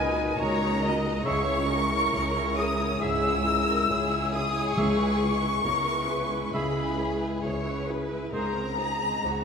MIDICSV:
0, 0, Header, 1, 12, 480
1, 0, Start_track
1, 0, Tempo, 878477
1, 687, Time_signature, 4, 2, 24, 8
1, 3086, Tempo, 894188
1, 5122, End_track
2, 0, Start_track
2, 0, Title_t, "Flute section"
2, 0, Program_c, 0, 73
2, 0, Note_on_c, 0, 80, 104
2, 201, Note_on_c, 0, 82, 113
2, 204, Note_off_c, 0, 80, 0
2, 521, Note_off_c, 0, 82, 0
2, 683, Note_on_c, 0, 85, 127
2, 1389, Note_off_c, 0, 85, 0
2, 1401, Note_on_c, 0, 87, 99
2, 1644, Note_off_c, 0, 87, 0
2, 1644, Note_on_c, 0, 88, 113
2, 2366, Note_off_c, 0, 88, 0
2, 2374, Note_on_c, 0, 87, 91
2, 2609, Note_off_c, 0, 87, 0
2, 2610, Note_on_c, 0, 85, 120
2, 3563, Note_on_c, 0, 83, 88
2, 3568, Note_off_c, 0, 85, 0
2, 4035, Note_off_c, 0, 83, 0
2, 4530, Note_on_c, 0, 82, 113
2, 5122, Note_off_c, 0, 82, 0
2, 5122, End_track
3, 0, Start_track
3, 0, Title_t, "Violin section"
3, 0, Program_c, 1, 48
3, 0, Note_on_c, 1, 80, 85
3, 198, Note_off_c, 1, 80, 0
3, 208, Note_on_c, 1, 82, 83
3, 678, Note_off_c, 1, 82, 0
3, 692, Note_on_c, 1, 85, 93
3, 1408, Note_off_c, 1, 85, 0
3, 1411, Note_on_c, 1, 87, 90
3, 1649, Note_off_c, 1, 87, 0
3, 1649, Note_on_c, 1, 88, 90
3, 2364, Note_on_c, 1, 87, 89
3, 2368, Note_off_c, 1, 88, 0
3, 2600, Note_off_c, 1, 87, 0
3, 2603, Note_on_c, 1, 85, 91
3, 3564, Note_off_c, 1, 85, 0
3, 3570, Note_on_c, 1, 83, 70
3, 4048, Note_off_c, 1, 83, 0
3, 4530, Note_on_c, 1, 82, 83
3, 5122, Note_off_c, 1, 82, 0
3, 5122, End_track
4, 0, Start_track
4, 0, Title_t, "Oboe"
4, 0, Program_c, 2, 68
4, 0, Note_on_c, 2, 75, 73
4, 666, Note_off_c, 2, 75, 0
4, 687, Note_on_c, 2, 76, 72
4, 865, Note_off_c, 2, 76, 0
4, 1644, Note_on_c, 2, 76, 78
4, 1825, Note_off_c, 2, 76, 0
4, 2610, Note_on_c, 2, 76, 69
4, 2788, Note_off_c, 2, 76, 0
4, 3563, Note_on_c, 2, 76, 64
4, 3744, Note_off_c, 2, 76, 0
4, 4528, Note_on_c, 2, 72, 56
4, 4708, Note_off_c, 2, 72, 0
4, 5122, End_track
5, 0, Start_track
5, 0, Title_t, "Violin section"
5, 0, Program_c, 3, 48
5, 0, Note_on_c, 3, 71, 75
5, 201, Note_off_c, 3, 71, 0
5, 209, Note_on_c, 3, 73, 82
5, 443, Note_off_c, 3, 73, 0
5, 451, Note_on_c, 3, 75, 78
5, 689, Note_off_c, 3, 75, 0
5, 691, Note_on_c, 3, 73, 82
5, 923, Note_off_c, 3, 73, 0
5, 932, Note_on_c, 3, 70, 82
5, 1647, Note_on_c, 3, 68, 63
5, 1649, Note_off_c, 3, 70, 0
5, 1887, Note_off_c, 3, 68, 0
5, 1888, Note_on_c, 3, 70, 71
5, 2127, Note_on_c, 3, 68, 89
5, 2128, Note_off_c, 3, 70, 0
5, 3087, Note_on_c, 3, 70, 75
5, 3088, Note_off_c, 3, 68, 0
5, 3321, Note_off_c, 3, 70, 0
5, 3327, Note_on_c, 3, 71, 67
5, 3566, Note_off_c, 3, 71, 0
5, 3566, Note_on_c, 3, 68, 70
5, 4046, Note_off_c, 3, 68, 0
5, 4053, Note_on_c, 3, 73, 70
5, 4290, Note_off_c, 3, 73, 0
5, 4290, Note_on_c, 3, 71, 64
5, 4528, Note_off_c, 3, 71, 0
5, 4530, Note_on_c, 3, 70, 62
5, 4764, Note_off_c, 3, 70, 0
5, 4764, Note_on_c, 3, 68, 55
5, 5006, Note_off_c, 3, 68, 0
5, 5009, Note_on_c, 3, 66, 53
5, 5122, Note_off_c, 3, 66, 0
5, 5122, End_track
6, 0, Start_track
6, 0, Title_t, "Clarinet"
6, 0, Program_c, 4, 71
6, 0, Note_on_c, 4, 70, 72
6, 590, Note_off_c, 4, 70, 0
6, 683, Note_on_c, 4, 68, 76
6, 863, Note_off_c, 4, 68, 0
6, 1643, Note_on_c, 4, 68, 76
6, 1824, Note_off_c, 4, 68, 0
6, 2606, Note_on_c, 4, 68, 68
6, 2786, Note_off_c, 4, 68, 0
6, 3567, Note_on_c, 4, 68, 64
6, 3746, Note_off_c, 4, 68, 0
6, 4528, Note_on_c, 4, 68, 59
6, 4708, Note_off_c, 4, 68, 0
6, 5122, End_track
7, 0, Start_track
7, 0, Title_t, "Grand piano"
7, 0, Program_c, 5, 0
7, 0, Control_c, 5, 64, 127
7, 0, Note_on_c, 5, 37, 60
7, 0, Note_on_c, 5, 63, 52
7, 0, Note_on_c, 5, 66, 50
7, 0, Note_on_c, 5, 70, 55
7, 0, Note_on_c, 5, 75, 55
7, 184, Note_off_c, 5, 63, 0
7, 184, Note_off_c, 5, 66, 0
7, 185, Note_off_c, 5, 75, 0
7, 203, Note_on_c, 5, 63, 55
7, 205, Note_off_c, 5, 70, 0
7, 205, Note_on_c, 5, 70, 56
7, 207, Note_on_c, 5, 75, 60
7, 423, Note_off_c, 5, 63, 0
7, 424, Note_off_c, 5, 70, 0
7, 425, Note_off_c, 5, 75, 0
7, 448, Note_on_c, 5, 63, 52
7, 449, Note_on_c, 5, 70, 54
7, 451, Note_on_c, 5, 75, 63
7, 665, Note_off_c, 5, 63, 0
7, 666, Note_off_c, 5, 70, 0
7, 667, Note_off_c, 5, 75, 0
7, 686, Note_off_c, 5, 37, 0
7, 686, Note_on_c, 5, 37, 74
7, 697, Control_c, 5, 64, 0
7, 777, Control_c, 5, 64, 127
7, 918, Note_off_c, 5, 37, 0
7, 927, Note_on_c, 5, 64, 50
7, 930, Note_on_c, 5, 68, 48
7, 932, Note_on_c, 5, 73, 51
7, 1144, Note_off_c, 5, 64, 0
7, 1145, Note_off_c, 5, 68, 0
7, 1146, Note_off_c, 5, 73, 0
7, 1164, Note_on_c, 5, 64, 51
7, 1165, Note_on_c, 5, 68, 50
7, 1167, Note_on_c, 5, 73, 52
7, 1383, Note_off_c, 5, 64, 0
7, 1383, Note_off_c, 5, 68, 0
7, 1385, Note_off_c, 5, 73, 0
7, 1407, Note_on_c, 5, 64, 52
7, 1408, Note_on_c, 5, 68, 51
7, 1410, Note_on_c, 5, 73, 55
7, 1625, Note_off_c, 5, 64, 0
7, 1625, Note_off_c, 5, 68, 0
7, 1626, Note_off_c, 5, 73, 0
7, 1647, Note_on_c, 5, 44, 60
7, 1880, Note_off_c, 5, 44, 0
7, 1884, Note_on_c, 5, 64, 52
7, 1889, Note_on_c, 5, 68, 48
7, 1891, Note_on_c, 5, 73, 52
7, 2104, Note_off_c, 5, 64, 0
7, 2106, Note_off_c, 5, 68, 0
7, 2107, Note_off_c, 5, 73, 0
7, 2129, Note_on_c, 5, 64, 55
7, 2131, Note_on_c, 5, 68, 54
7, 2133, Note_on_c, 5, 73, 57
7, 2345, Note_off_c, 5, 64, 0
7, 2347, Note_off_c, 5, 68, 0
7, 2347, Note_off_c, 5, 73, 0
7, 2372, Note_on_c, 5, 64, 51
7, 2372, Note_on_c, 5, 68, 50
7, 2377, Note_on_c, 5, 73, 52
7, 2587, Note_off_c, 5, 64, 0
7, 2587, Note_off_c, 5, 68, 0
7, 2589, Note_off_c, 5, 73, 0
7, 2608, Note_on_c, 5, 37, 67
7, 2616, Control_c, 5, 64, 0
7, 2716, Control_c, 5, 64, 127
7, 2840, Note_off_c, 5, 37, 0
7, 2848, Note_on_c, 5, 64, 46
7, 2851, Note_on_c, 5, 68, 42
7, 2853, Note_on_c, 5, 71, 47
7, 3067, Note_off_c, 5, 64, 0
7, 3068, Note_off_c, 5, 68, 0
7, 3069, Note_off_c, 5, 71, 0
7, 3087, Note_on_c, 5, 64, 46
7, 3089, Note_on_c, 5, 68, 45
7, 3091, Note_on_c, 5, 59, 52
7, 3305, Note_off_c, 5, 64, 0
7, 3306, Note_off_c, 5, 68, 0
7, 3307, Note_off_c, 5, 59, 0
7, 3324, Note_on_c, 5, 64, 49
7, 3327, Note_on_c, 5, 68, 52
7, 3328, Note_on_c, 5, 71, 57
7, 3543, Note_off_c, 5, 64, 0
7, 3545, Note_off_c, 5, 68, 0
7, 3545, Note_off_c, 5, 71, 0
7, 3565, Note_on_c, 5, 37, 57
7, 3798, Note_off_c, 5, 37, 0
7, 3802, Note_on_c, 5, 64, 45
7, 3807, Note_on_c, 5, 68, 41
7, 3808, Note_on_c, 5, 71, 49
7, 4023, Note_off_c, 5, 64, 0
7, 4025, Note_off_c, 5, 68, 0
7, 4026, Note_off_c, 5, 71, 0
7, 4047, Note_on_c, 5, 64, 45
7, 4050, Note_on_c, 5, 68, 49
7, 4051, Note_on_c, 5, 71, 49
7, 4266, Note_off_c, 5, 64, 0
7, 4267, Note_off_c, 5, 68, 0
7, 4268, Note_off_c, 5, 71, 0
7, 4291, Note_on_c, 5, 64, 48
7, 4293, Note_on_c, 5, 68, 48
7, 4295, Note_on_c, 5, 71, 53
7, 4507, Note_off_c, 5, 64, 0
7, 4508, Note_off_c, 5, 68, 0
7, 4509, Note_off_c, 5, 71, 0
7, 4523, Note_on_c, 5, 37, 56
7, 4537, Control_c, 5, 64, 0
7, 4632, Control_c, 5, 64, 127
7, 4758, Note_off_c, 5, 37, 0
7, 4766, Note_on_c, 5, 63, 37
7, 4767, Note_on_c, 5, 68, 37
7, 4769, Note_on_c, 5, 72, 43
7, 4986, Note_off_c, 5, 63, 0
7, 4987, Note_off_c, 5, 68, 0
7, 4988, Note_off_c, 5, 72, 0
7, 5009, Note_on_c, 5, 63, 36
7, 5011, Note_on_c, 5, 68, 35
7, 5014, Note_on_c, 5, 72, 42
7, 5122, Note_off_c, 5, 63, 0
7, 5122, Note_off_c, 5, 68, 0
7, 5122, Note_off_c, 5, 72, 0
7, 5122, End_track
8, 0, Start_track
8, 0, Title_t, "Viola section"
8, 0, Program_c, 6, 48
8, 0, Note_on_c, 6, 66, 58
8, 0, Note_on_c, 6, 70, 59
8, 78, Note_off_c, 6, 66, 0
8, 83, Note_on_c, 6, 63, 54
8, 84, Note_on_c, 6, 66, 51
8, 85, Note_off_c, 6, 70, 0
8, 197, Note_off_c, 6, 66, 0
8, 203, Note_on_c, 6, 66, 60
8, 205, Note_off_c, 6, 63, 0
8, 205, Note_on_c, 6, 70, 61
8, 316, Note_off_c, 6, 66, 0
8, 317, Note_off_c, 6, 70, 0
8, 324, Note_on_c, 6, 66, 56
8, 326, Note_on_c, 6, 63, 55
8, 436, Note_off_c, 6, 66, 0
8, 441, Note_on_c, 6, 70, 61
8, 443, Note_on_c, 6, 66, 61
8, 447, Note_off_c, 6, 63, 0
8, 558, Note_off_c, 6, 66, 0
8, 564, Note_off_c, 6, 70, 0
8, 565, Note_on_c, 6, 63, 58
8, 565, Note_on_c, 6, 66, 56
8, 682, Note_on_c, 6, 68, 66
8, 683, Note_on_c, 6, 61, 63
8, 686, Note_off_c, 6, 63, 0
8, 686, Note_off_c, 6, 66, 0
8, 795, Note_off_c, 6, 68, 0
8, 796, Note_off_c, 6, 61, 0
8, 801, Note_on_c, 6, 64, 55
8, 801, Note_on_c, 6, 73, 59
8, 920, Note_on_c, 6, 61, 53
8, 921, Note_on_c, 6, 68, 55
8, 923, Note_off_c, 6, 64, 0
8, 923, Note_off_c, 6, 73, 0
8, 1036, Note_on_c, 6, 73, 58
8, 1037, Note_on_c, 6, 64, 57
8, 1042, Note_off_c, 6, 61, 0
8, 1043, Note_off_c, 6, 68, 0
8, 1157, Note_on_c, 6, 61, 65
8, 1157, Note_on_c, 6, 68, 57
8, 1161, Note_off_c, 6, 64, 0
8, 1161, Note_off_c, 6, 73, 0
8, 1272, Note_off_c, 6, 61, 0
8, 1272, Note_off_c, 6, 68, 0
8, 1282, Note_on_c, 6, 73, 52
8, 1283, Note_on_c, 6, 64, 55
8, 1404, Note_off_c, 6, 64, 0
8, 1404, Note_off_c, 6, 73, 0
8, 1406, Note_on_c, 6, 61, 61
8, 1406, Note_on_c, 6, 68, 58
8, 1523, Note_on_c, 6, 73, 59
8, 1524, Note_on_c, 6, 64, 60
8, 1526, Note_off_c, 6, 61, 0
8, 1526, Note_off_c, 6, 68, 0
8, 1645, Note_off_c, 6, 64, 0
8, 1645, Note_off_c, 6, 73, 0
8, 1646, Note_on_c, 6, 68, 57
8, 1648, Note_on_c, 6, 61, 58
8, 1758, Note_off_c, 6, 68, 0
8, 1759, Note_off_c, 6, 61, 0
8, 1768, Note_on_c, 6, 73, 53
8, 1769, Note_on_c, 6, 64, 58
8, 1885, Note_on_c, 6, 61, 56
8, 1886, Note_on_c, 6, 68, 56
8, 1887, Note_off_c, 6, 73, 0
8, 1888, Note_off_c, 6, 64, 0
8, 2001, Note_on_c, 6, 64, 53
8, 2001, Note_on_c, 6, 73, 50
8, 2006, Note_off_c, 6, 61, 0
8, 2006, Note_off_c, 6, 68, 0
8, 2124, Note_off_c, 6, 64, 0
8, 2124, Note_off_c, 6, 73, 0
8, 2124, Note_on_c, 6, 61, 56
8, 2128, Note_on_c, 6, 68, 60
8, 2237, Note_off_c, 6, 61, 0
8, 2239, Note_off_c, 6, 68, 0
8, 2245, Note_on_c, 6, 73, 52
8, 2246, Note_on_c, 6, 64, 54
8, 2360, Note_on_c, 6, 68, 56
8, 2362, Note_on_c, 6, 61, 61
8, 2366, Note_off_c, 6, 64, 0
8, 2366, Note_off_c, 6, 73, 0
8, 2481, Note_on_c, 6, 73, 60
8, 2482, Note_on_c, 6, 64, 57
8, 2483, Note_off_c, 6, 61, 0
8, 2483, Note_off_c, 6, 68, 0
8, 2599, Note_on_c, 6, 68, 61
8, 2601, Note_on_c, 6, 61, 63
8, 2603, Note_off_c, 6, 73, 0
8, 2604, Note_off_c, 6, 64, 0
8, 2714, Note_off_c, 6, 68, 0
8, 2715, Note_off_c, 6, 61, 0
8, 2719, Note_on_c, 6, 64, 53
8, 2719, Note_on_c, 6, 71, 55
8, 2830, Note_on_c, 6, 61, 58
8, 2832, Note_on_c, 6, 68, 53
8, 2842, Note_off_c, 6, 64, 0
8, 2843, Note_off_c, 6, 71, 0
8, 2952, Note_on_c, 6, 64, 54
8, 2952, Note_on_c, 6, 71, 51
8, 2959, Note_off_c, 6, 61, 0
8, 2959, Note_off_c, 6, 68, 0
8, 3074, Note_on_c, 6, 61, 54
8, 3074, Note_on_c, 6, 68, 61
8, 3080, Note_off_c, 6, 71, 0
8, 3081, Note_off_c, 6, 64, 0
8, 3191, Note_off_c, 6, 68, 0
8, 3192, Note_off_c, 6, 61, 0
8, 3194, Note_on_c, 6, 64, 49
8, 3195, Note_on_c, 6, 71, 52
8, 3318, Note_on_c, 6, 61, 51
8, 3319, Note_on_c, 6, 68, 53
8, 3320, Note_off_c, 6, 64, 0
8, 3320, Note_off_c, 6, 71, 0
8, 3440, Note_on_c, 6, 71, 55
8, 3442, Note_off_c, 6, 61, 0
8, 3442, Note_off_c, 6, 68, 0
8, 3442, Note_on_c, 6, 64, 59
8, 3562, Note_on_c, 6, 61, 55
8, 3563, Note_off_c, 6, 71, 0
8, 3564, Note_off_c, 6, 64, 0
8, 3564, Note_on_c, 6, 68, 55
8, 3675, Note_off_c, 6, 61, 0
8, 3676, Note_off_c, 6, 68, 0
8, 3681, Note_on_c, 6, 64, 50
8, 3681, Note_on_c, 6, 71, 49
8, 3798, Note_on_c, 6, 68, 50
8, 3799, Note_on_c, 6, 61, 49
8, 3803, Note_off_c, 6, 64, 0
8, 3803, Note_off_c, 6, 71, 0
8, 3922, Note_off_c, 6, 61, 0
8, 3922, Note_off_c, 6, 68, 0
8, 3923, Note_on_c, 6, 64, 46
8, 3924, Note_on_c, 6, 71, 47
8, 4045, Note_off_c, 6, 64, 0
8, 4045, Note_off_c, 6, 71, 0
8, 4045, Note_on_c, 6, 61, 49
8, 4046, Note_on_c, 6, 68, 50
8, 4158, Note_off_c, 6, 61, 0
8, 4158, Note_off_c, 6, 68, 0
8, 4164, Note_on_c, 6, 71, 46
8, 4165, Note_on_c, 6, 64, 44
8, 4283, Note_on_c, 6, 61, 51
8, 4284, Note_on_c, 6, 68, 51
8, 4285, Note_off_c, 6, 71, 0
8, 4286, Note_off_c, 6, 64, 0
8, 4403, Note_on_c, 6, 64, 49
8, 4404, Note_on_c, 6, 71, 51
8, 4405, Note_off_c, 6, 61, 0
8, 4405, Note_off_c, 6, 68, 0
8, 4525, Note_off_c, 6, 64, 0
8, 4525, Note_off_c, 6, 71, 0
8, 4525, Note_on_c, 6, 63, 54
8, 4526, Note_on_c, 6, 68, 53
8, 4637, Note_off_c, 6, 63, 0
8, 4638, Note_off_c, 6, 68, 0
8, 4647, Note_on_c, 6, 60, 48
8, 4648, Note_on_c, 6, 72, 46
8, 4767, Note_off_c, 6, 60, 0
8, 4768, Note_off_c, 6, 72, 0
8, 4770, Note_on_c, 6, 63, 45
8, 4771, Note_on_c, 6, 68, 47
8, 4889, Note_off_c, 6, 63, 0
8, 4890, Note_off_c, 6, 68, 0
8, 4890, Note_on_c, 6, 60, 43
8, 4890, Note_on_c, 6, 72, 47
8, 5009, Note_off_c, 6, 60, 0
8, 5009, Note_off_c, 6, 72, 0
8, 5014, Note_on_c, 6, 63, 45
8, 5015, Note_on_c, 6, 68, 47
8, 5122, Note_off_c, 6, 63, 0
8, 5122, Note_off_c, 6, 68, 0
8, 5122, End_track
9, 0, Start_track
9, 0, Title_t, "French horn section"
9, 0, Program_c, 7, 60
9, 0, Note_on_c, 7, 46, 76
9, 0, Note_on_c, 7, 63, 78
9, 664, Note_off_c, 7, 46, 0
9, 664, Note_off_c, 7, 63, 0
9, 676, Note_on_c, 7, 64, 75
9, 677, Note_on_c, 7, 56, 69
9, 2516, Note_off_c, 7, 56, 0
9, 2516, Note_off_c, 7, 64, 0
9, 2609, Note_on_c, 7, 64, 76
9, 2610, Note_on_c, 7, 56, 76
9, 4507, Note_off_c, 7, 56, 0
9, 4507, Note_off_c, 7, 64, 0
9, 4533, Note_on_c, 7, 60, 63
9, 4535, Note_on_c, 7, 56, 62
9, 5122, Note_off_c, 7, 56, 0
9, 5122, Note_off_c, 7, 60, 0
9, 5122, End_track
10, 0, Start_track
10, 0, Title_t, "Timpani"
10, 0, Program_c, 8, 47
10, 2607, Note_on_c, 8, 49, 71
10, 3306, Note_off_c, 8, 49, 0
10, 5122, End_track
11, 0, Start_track
11, 0, Title_t, "Cello section"
11, 0, Program_c, 10, 48
11, 0, Note_on_c, 10, 37, 80
11, 152, Note_off_c, 10, 37, 0
11, 205, Note_on_c, 10, 37, 85
11, 630, Note_off_c, 10, 37, 0
11, 686, Note_on_c, 10, 37, 89
11, 1108, Note_off_c, 10, 37, 0
11, 1165, Note_on_c, 10, 37, 77
11, 1589, Note_off_c, 10, 37, 0
11, 1645, Note_on_c, 10, 37, 74
11, 2070, Note_off_c, 10, 37, 0
11, 2126, Note_on_c, 10, 37, 79
11, 2549, Note_off_c, 10, 37, 0
11, 2605, Note_on_c, 10, 37, 82
11, 3030, Note_off_c, 10, 37, 0
11, 3086, Note_on_c, 10, 37, 66
11, 3508, Note_off_c, 10, 37, 0
11, 3564, Note_on_c, 10, 37, 71
11, 3988, Note_off_c, 10, 37, 0
11, 4047, Note_on_c, 10, 37, 61
11, 4470, Note_off_c, 10, 37, 0
11, 4527, Note_on_c, 10, 37, 66
11, 4951, Note_off_c, 10, 37, 0
11, 5011, Note_on_c, 10, 37, 59
11, 5122, Note_off_c, 10, 37, 0
11, 5122, End_track
12, 0, Start_track
12, 0, Title_t, "Double bass section"
12, 0, Program_c, 11, 48
12, 0, Note_on_c, 11, 37, 81
12, 149, Note_off_c, 11, 37, 0
12, 207, Note_on_c, 11, 37, 80
12, 631, Note_off_c, 11, 37, 0
12, 689, Note_on_c, 11, 37, 81
12, 1109, Note_off_c, 11, 37, 0
12, 1166, Note_on_c, 11, 37, 76
12, 1590, Note_off_c, 11, 37, 0
12, 1649, Note_on_c, 11, 37, 92
12, 2072, Note_off_c, 11, 37, 0
12, 2128, Note_on_c, 11, 37, 70
12, 2549, Note_off_c, 11, 37, 0
12, 2608, Note_on_c, 11, 37, 81
12, 3032, Note_off_c, 11, 37, 0
12, 3087, Note_on_c, 11, 37, 71
12, 3509, Note_off_c, 11, 37, 0
12, 3564, Note_on_c, 11, 37, 75
12, 3988, Note_off_c, 11, 37, 0
12, 4042, Note_on_c, 11, 37, 66
12, 4468, Note_off_c, 11, 37, 0
12, 4526, Note_on_c, 11, 37, 73
12, 4951, Note_off_c, 11, 37, 0
12, 5007, Note_on_c, 11, 37, 58
12, 5122, Note_off_c, 11, 37, 0
12, 5122, End_track
0, 0, End_of_file